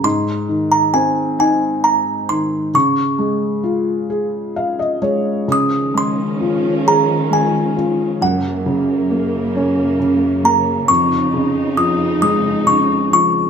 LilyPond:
<<
  \new Staff \with { instrumentName = "Music box" } { \time 6/8 \key des \major \tempo 4. = 44 c'''8. bes''16 aes''8 aes''8 bes''8 c'''8 | des'''2 r4 | ees'''8 c'''4 bes''8 aes''4 | ges''4 r4. bes''8 |
des'''4 ees'''8 ees'''8 des'''8 des'''8 | }
  \new Staff \with { instrumentName = "Felt piano" } { \time 6/8 \key des \major r2. | r2 f''16 ees''16 des''8 | r2. | r2. |
r2. | }
  \new Staff \with { instrumentName = "Felt piano" } { \clef bass \time 6/8 \key des \major aes,8 ees8 c'8 ees'4 ees8 | des8 aes8 f'8 aes'4 aes8 | des8 aes8 f'8 aes'8 aes8 f'8 | ges,8 des8 bes8 des'8 des8 bes8 |
f,8 des8 f8 aes8 des8 f8 | }
  \new Staff \with { instrumentName = "String section" } { \clef bass \time 6/8 \key des \major << { r2. | r2. | <ees des'>2. | <ges, bes>2. |
<f, ees'>2. | } \\ { r2. | r2. | f2. | des2.~ |
des2. | } >> }
>>